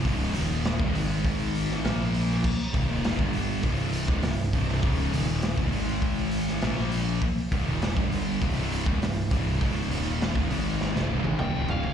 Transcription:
<<
  \new Staff \with { instrumentName = "Lead electric guitar" } { \time 4/4 \key c \phrygian \tempo 4 = 100 r1 | r1 | r1 | r1 |
r2. g''8 f''8 | }
  \new Staff \with { instrumentName = "Distorted electric guitar" } { \clef bass \time 4/4 \key c \phrygian <des, aes, des>8 <ees, bes, ees>8. <c, g,>16 <aes, ees aes>4. <bes, f bes>4 | r8 <c, g,>16 <ees, bes, ees>8 <g, d g>8. <c, g, c>8. <des, aes,>16 <c, g,>8 <c, g, c>8 | <des, aes, des>8 <ees, bes, ees>8. <c, g,>16 <aes, ees aes>4. <bes, f bes>4 | r8 <c, g,>16 <ees, bes, ees>8 <g, d g>8. <c, g, c>8. <des, aes,>16 <c, g,>8 <c, g, c>8 |
<des, aes, des>8 <ees, bes, ees>8. <c, g,>16 <aes, ees aes>8. <f, c>16 <c, g,>16 <aes, ees>16 <ees, bes,>16 <des, aes, des>8. | }
  \new Staff \with { instrumentName = "Distorted electric guitar" } { \clef bass \time 4/4 \key c \phrygian <des, aes, des>8 <ees, bes, ees>8. <c, g,>16 <aes, ees aes>4. <bes, f bes>4 | r8 <c, g,>16 <ees, bes, ees>8 <g, d g>8. <c, g, c>8. <des, aes,>16 <c, g,>8 <c, g, c>8 | <des, aes, des>8 <ees, bes, ees>8. <c, g,>16 <aes, ees aes>4. <bes, f bes>4 | r8 <c, g,>16 <ees, bes, ees>8 <g, d g>8. <c, g, c>8. <des, aes,>16 <c, g,>8 <c, g, c>8 |
<des, aes, des>8 <ees, bes, ees>8. <c, g,>16 <aes, ees aes>8. <f, c>16 <c, g,>16 <aes, ees>16 <ees, bes,>16 <des, aes, des>8. | }
  \new Staff \with { instrumentName = "Distorted electric guitar" } { \clef bass \time 4/4 \key c \phrygian <des, aes, des>8 <ees, bes, ees>8. <c, g,>16 <aes, ees aes>4. <bes, f bes>4 | r8 <c, g,>16 <ees, bes, ees>8 <g, d g>8. <c, g, c>8. <des, aes,>16 <c, g,>8 <c, g, c>8 | <des, aes, des>8 <ees, bes, ees>8. <c, g,>16 <aes, ees aes>4. <bes, f bes>4 | r8 <c, g,>16 <ees, bes, ees>8 <g, d g>8. <c, g, c>8. <des, aes,>16 <c, g,>8 <c, g, c>8 |
<des, aes, des>8 <ees, bes, ees>8. <c, g,>16 <aes, ees aes>8. <f, c>16 <c, g,>16 <aes, ees>16 <ees, bes,>16 <des, aes, des>8. | }
  \new Staff \with { instrumentName = "Picked electric bass" } { \clef bass \time 4/4 \key c \phrygian des,,8 ees,,8. c,,16 aes,,4. bes,,4 | r8 c,,16 ees,,8 g,,8. c,,8. des,,16 c,,8 c,,8 | des,,8 ees,,8. c,,16 aes,,4. bes,,4 | r8 c,,16 ees,,8 g,,8. c,,8. des,,16 c,,8 c,,8 |
des,,8 ees,,8. c,,16 aes,,8. f,,16 c,,16 aes,,16 ees,,16 des,,8. | }
  \new DrumStaff \with { instrumentName = "Drums" } \drummode { \time 4/4 <hho bd>8 hho8 <hho sn>16 bd16 hho8 <hho bd>8 hho16 sn16 <hho sn>8 hho16 sn16 | <cymc bd>8 <hho bd>8 <hho sn>16 bd16 hho8 <hho bd>8 hho16 <bd sn>16 <hho sn>8 <hho bd>16 sn16 | <hho bd>8 hho8 <hho sn>16 bd16 hho8 <hho bd>8 hho16 sn16 <hho sn>8 hho8 | <hho bd>8 <hho bd>8 <hho sn>16 bd16 hho8 <hho bd>8 hho16 bd16 <hho sn>8 <hho bd>8 |
<hho bd>8 hho8 <hho sn>16 bd16 hho8 sn16 sn8 tommh16 toml8 tomfh16 tomfh16 | }
>>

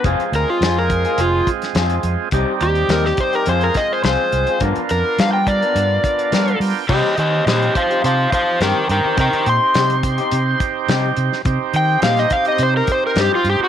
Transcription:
<<
  \new Staff \with { instrumentName = "Electric slide guitar" } { \time 4/4 \key c \minor \tempo 4 = 105 r8 bes'16 f'8 bes'8. f'8 r4. | r8 g'8 bes'16 g'16 c''16 bes'16 c''16 bes'16 ees''16 c''16 c''4 | r8 ais'8 f''16 g''16 d''2 r8 | <g' ees''>8 <g' ees''>8 <g' ees''>8 <c'' f''>8 <c'' f''>8 <c'' f''>8 <bes' g''>8 <bes' g''>8 |
<bes' g''>8 c'''2 r4. | r8 g''8 f''16 ees''16 f''16 ees''16 c''16 bes'16 c''16 bes'16 g'16 f'16 g'16 fis'16 | }
  \new Staff \with { instrumentName = "Tonewheel organ" } { \time 4/4 \key c \minor << { r1 | r1 | r2. f''8 g''8 | r1 |
r1 | r1 | } \\ { <aes c' f' aes'>1 | <g c' ees' g'>2 <aes c' f' aes'>2 | <b d' f' ais'>1 | <c' ees' g' c''>1~ |
<c' ees' g' c''>1 | <c' ees' g' c''>1 | } >> }
  \new Staff \with { instrumentName = "Clean electric guitar" } { \time 4/4 \key c \minor <f c' f' aes'>16 r8. <f c' f' aes'>16 r8 <c' f' aes'>16 r4 <f c' f' aes'>16 r8. | <g c' ees' g'>16 r8. <g c' ees' g'>16 r8 <c' ees' g'>16 <f c' f' aes'>16 r8. <f c' f' aes'>16 r8 <c' f' aes'>16 | <f b d' ais'>16 r8. <f b d' ais'>16 r8 <b d' ais'>16 r4 <f b d' ais'>16 r8. | <g c' ees' g'>16 r8. <g c' ees' g'>16 r8 <c' ees' g'>16 r4 <g c' ees' g'>16 r8 <c' ees' g'>16 |
r4 <g c' ees' g'>16 r8 <c' ees' g'>16 r4 <g c' ees' g'>16 r8. | r4 <g c' ees' g'>16 r8 <c' ees' g'>16 r4 <g c' ees' g'>16 r8. | }
  \new Staff \with { instrumentName = "Fingered electric bass" } { \clef bass \time 4/4 \key c \minor f,,16 r16 d,16 r16 f,4 f,,8 r8 f,8 f,16 r16 | c,16 r16 ees,8 ees,8 r8 f,8 r8 c,16 r16 c,16 r16 | g,16 r16 f,16 r16 g4 g,8 r8 g8 g16 r16 | c16 r16 ees8 bes,8 r8 c8 r8 g,16 r16 g,16 r16 |
c16 r16 bes,16 r16 c4 c8 r8 c8 c16 r16 | c16 r16 ees8 bes,8 r8 c8 r8 g,16 r16 g,16 r16 | }
  \new DrumStaff \with { instrumentName = "Drums" } \drummode { \time 4/4 <hh bd>16 hh16 hh8 <hh sn>8 <hh bd>16 hh16 hh8 <hh bd>16 <hh sn>16 <hh sn>16 hh16 hh8 | <hh bd>8 hh16 hh16 <hh sn>16 sn16 <hh bd>16 hh16 hh16 hh16 <hh bd sn>8 <hh sn>8 hh16 hh16 | <hh bd>16 hh16 hh8 <hh sn>8 <hh bd>16 hh16 hh8 <hh bd>16 hh16 <hh sn>16 hh16 hho8 | <cymc bd>8 hh8 <hh sn>16 hh16 <hh bd>16 hh16 hh8 <hh bd>8 <hh sn>8 hh8 |
<hh bd>16 hh16 hh8 <hh sn>16 hh16 <hh bd>16 hh16 hh8 <hh bd>8 <hh sn>8 hh16 sn16 | <hh bd>8 hh8 <hh sn>16 <hh sn>16 <hh bd>16 hh16 hh8 <hh bd>8 <hh sn>8 hh8 | }
>>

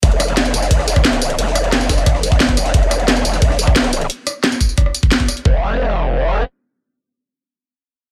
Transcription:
<<
  \new Staff \with { instrumentName = "Wobble bass" } { \clef bass \time 4/4 \key c \phrygian \tempo 4 = 177 f,,4. f,,2~ f,,8 | f,,4. f,,2~ f,,8 | f,,4. f,,2~ f,,8 | r1 |
f,,2. r4 | r1 | }
  \new DrumStaff \with { instrumentName = "Drums" } \drummode { \time 4/4 <hh bd cymr>16 cymr16 <hh cymr ss tamb>16 cymr16 <hh cymr sn>16 <hh sn tamb>16 <hh cymr tamb>16 <sn tamb>16 <hh bd cymr>16 <ss sn>16 <hh hho tamb>16 <hh bd ss>16 <hh cymr sn>16 <hh sn>16 <hh cymr tamb>16 hh16 | <hh cymr>16 sn16 <hh cymr ss tamb>16 cymr16 <hh cymr sn>16 <hh sn tamb>16 <hh bd cymr sn tamb>16 <sn tamb>16 <hh bd cymr ss>16 <ss sn>16 <hh cymr tamb>16 <hh bd sn>16 <hh cymr sn>16 <hh bd cymr>16 <hh cymr ss tamb>16 <hh sn>16 | <hh bd cymr>16 cymr16 <hh cymr ss tamb>16 cymr16 <hh cymr sn>16 <hh sn tamb>16 <hh cymr tamb>16 <sn tamb>16 <hh bd cymr>16 <ss sn>16 <hh hho tamb>16 <hh bd ss>16 <hh cymr sn>16 <hh sn>16 <hh cymr tamb>16 hh16 | hh8 <hh ss tamb>8 <hh sn>16 <hh tamb>16 <hh bd tamb>16 tamb16 <hh bd ss>16 ss16 <hh tamb>16 <hh bd>16 <hh sn>16 <hh bd>16 <hh ss tamb>16 hh16 |
bd4 r4 r4 r4 | r4 r4 r4 r4 | }
>>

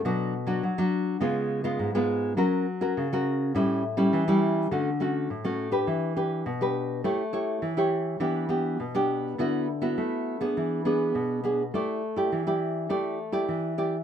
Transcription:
\new Staff \with { instrumentName = "Nylon-string guitar" } { \time 4/4 \key a \mixolydian \tempo 4 = 103 << { <fis d' fis'>8 r16 <fis d' fis'>8 <fis d' fis'>8. <gis b eis'>8. <gis b eis'>8 <gis b eis'>8. | <cis' fis' ais'>8 r16 <cis' fis' ais'>8 <cis' fis' ais'>8. <g cis' e'>8 r16 <g cis' e'>8 <g cis' e'>8. | \key d \major <a cis' fis'>16 r16 <a cis' fis'>8 r16 <a cis' fis'>8 <d' g' b'>8. <d' g' b'>8 r16 <d' g' b'>8. | <e' g' cis''>16 r16 <e' g' cis''>8. <e' g' cis''>8. <b d' g'>8 <b d' g'>8 r16 <b d' g'>8. |
<b e' fis'>8 r16 <b e' fis'>4 <b d' gis'>8. <b d' gis'>4 <b d' gis'>16 r16 | <e' g' d''>8 r16 <e' g' d''>8 <e' g' d''>8. <e' g' d''>8 r16 <e' g' d''>8. <e' g' d''>16 r16 | } \\ { b,4 fis4 cis4 gis,4 | fis4 cis4 a,4 e4 | d4 a,4 e4 b,4 | a4 e4 e4 b,4 |
d4 a4 e4 b,4 | a4 e4 a4 e4 | } >> }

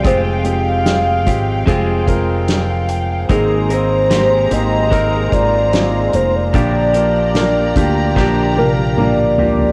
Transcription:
<<
  \new Staff \with { instrumentName = "String section" } { \time 4/4 \key f \dorian \tempo 4 = 74 <f'' g''>1 | <aes c'' bes''>1 | <g' d'' bes''>1 | }
  \new Staff \with { instrumentName = "Soft synth lead" } { \time 4/4 \key f \dorian c''8 f''2 r4. | aes'8 c''4 ees''4 d''4 c''16 d''16~ | d''2~ d''8 bes'8 d''4 | }
  \new Staff \with { instrumentName = "Grand piano" } { \time 4/4 \key f \dorian << { r2. r16 f''16 g''16 f''16~ | f''16 r2. r8. | r1 | } \\ { <aes c' f' aes'>8 <aes c' f' g'>8 <aes c' f' aes'>8 <aes c' f' g'>8 <aes c' f' aes'>8 <aes c' f' bes'>8 r4 | <bes c' ees' aes'>8 <bes c' ees' aes'>8 <bes c' ees' g'>8 <bes c' ees' g'>8 <bes c' ees' bes'>8 <bes c' ees' f'>8 <bes c' ees' f'>8 <bes c' ees' bes'>8 | <bes d' f' g'>8 <bes d' f' bes'>8 <bes d' f' bes'>8 <bes d' f' g'>8 <bes d' f' g'>8 <bes d' f' bes'>8 <bes d' f' bes'>8 <bes d' f' g'>8 | } >> }
  \new Staff \with { instrumentName = "Grand piano" } { \clef bass \time 4/4 \key f \dorian r1 | aes,4. r2 r8 | bes,4. r2 r8 | }
  \new Staff \with { instrumentName = "Clean electric guitar" } { \time 4/4 \key f \dorian <f aes c' f' g'>2 <f aes c' f' g'>2 | <aes c' ees' bes'>8 <c' ees' bes'>8 <aes c' ees' bes'>4 <aes c' ees' bes'>2 | <bes, d f bes d' g'>8 <f bes d' g'>4. <bes, d f bes d' g'>2 | }
  \new Staff \with { instrumentName = "Fretless electric bass" } { \clef bass \time 4/4 \key f \dorian f,,4. aes,,8 f,,2 | aes,,4. aes,,4 aes,,4 f,,8 | bes,,4. d,8 bes,,2 | }
  \new DrumStaff \with { instrumentName = "Drums" } \drummode { \time 4/4 <hh bd>8 hh8 <hh sn>8 <hh bd>8 <hh bd>8 <hh bd>8 <hh sn>8 hh8 | <hh bd>8 hh8 <hh sn>8 hh8 <hh bd>8 <hh bd>8 <hh sn>8 hh8 | <hh bd>8 hh8 <hh sn>8 <hh bd>8 <bd sn>8 tommh16 tommh16 toml8 tomfh16 tomfh16 | }
>>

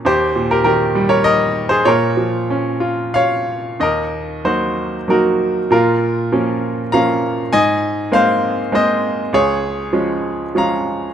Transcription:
<<
  \new Staff \with { instrumentName = "Grand piano" } { \time 3/4 \key bes \dorian \tempo 4 = 98 <g' c''>8. <g' bes'>16 <g' bes'>8. <bes' des''>16 <bes' ees''>8. <aes' c''>16 | <bes' des''>2 <des'' f''>4 | \key ees \dorian <bes' ees''>4 <ges' c''>4 <ges' bes'>4 | <f' bes'>2 <f'' bes''>4 |
<ees'' aes''>4 <c'' f''>4 <c'' ees''>4 | <aes' des''>2 <f'' bes''>4 | }
  \new Staff \with { instrumentName = "Grand piano" } { \clef bass \time 3/4 \key bes \dorian ees,8 bes,8 ees8 g4. | bes,8 f8 des'8 f'4. | \key ees \dorian ees,4 <ges bes ees'>4 <ges bes ees'>4 | bes,4 <f bes des'>4 <f bes des'>4 |
aes,4 <aes bes c'>4 <aes bes c'>4 | des,4 <f aes des'>4 <f aes des'>4 | }
>>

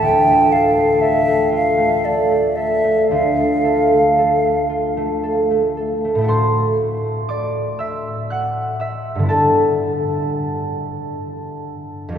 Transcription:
<<
  \new Staff \with { instrumentName = "Flute" } { \time 6/8 \key a \minor \tempo 4. = 40 g''8 f''8 e''8 f''8 d''8 e''8 | f''4. r4. | r2. | r2. | }
  \new Staff \with { instrumentName = "Harp" } { \time 6/8 \key a \minor << { r2. | r2. | <c'' c'''>4 <d'' d'''>8 <e'' e'''>8 <fis'' fis'''>8 <e'' e'''>8 | <a' a''>2. | } \\ { <d, a a'>16 f'16 a'16 a16 a'16 a16 f'16 a16 a'16 a16 a'16 a16 | d,16 f'16 a'16 a16 a'16 a16 f'16 a16 a'16 a16 a'16 a16~ | a2.~ | a2. | } >> }
  \new Staff \with { instrumentName = "Harp" } { \time 6/8 \key a \minor r2. | r2. | <a, a e' fis' a'>2. | <g, d b e'>2. | }
>>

